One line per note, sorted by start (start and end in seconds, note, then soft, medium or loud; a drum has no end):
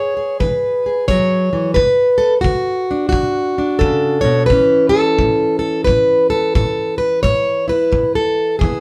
0.00 0.37 E3 medium
0.00 0.15 G#4 medium
0.00 0.40 C#5 loud
0.17 0.84 G#4 soft
0.40 1.05 E3 medium
0.40 1.08 B4 medium
0.40 kick medium
0.86 1.75 G#4 soft
1.08 1.52 F#3 medium
1.08 1.74 C#5 medium
1.08 kick medium
1.53 1.78 E3 medium
1.74 2.40 D3 medium
1.74 2.41 B4 loud
1.74 kick medium
2.18 2.34 A4 medium
2.41 3.08 F#4 medium
2.41 kick medium
2.45 3.08 D3 medium
2.91 3.57 D4 soft
3.09 4.21 F#4 medium
3.09 kick medium
3.15 3.78 D3 medium
3.58 4.48 D4 soft
3.79 4.49 A4 medium
3.79 kick medium
3.83 4.24 C#3 medium
4.21 4.50 B2 medium
4.21 4.46 C#5 loud
4.46 4.89 B4 loud
4.46 kick medium
4.51 5.14 A2 medium
4.51 8.62 E3 soft
4.51 7.22 C#4 medium
4.51 7.67 E4 soft
4.89 5.58 A4 loud
5.19 5.83 A2 medium
5.19 kick medium
5.59 5.84 A4 medium
5.84 6.28 B4 medium
5.84 kick medium
5.88 6.51 A2 medium
6.30 6.55 A4 medium
6.55 7.19 A2 medium
6.55 6.98 A4 medium
6.55 kick medium
6.98 7.22 B4 medium
7.23 7.88 A2 medium
7.23 7.69 C#5 loud
7.23 kick medium
7.68 8.58 E4 soft
7.68 8.15 B4 medium
7.92 8.55 A2 medium
7.92 kick medium
8.15 8.59 A4 medium
8.59 8.80 G#4 medium
8.59 kick medium
8.63 8.80 E3 medium
8.63 8.80 B3 soft
8.63 8.80 E4 soft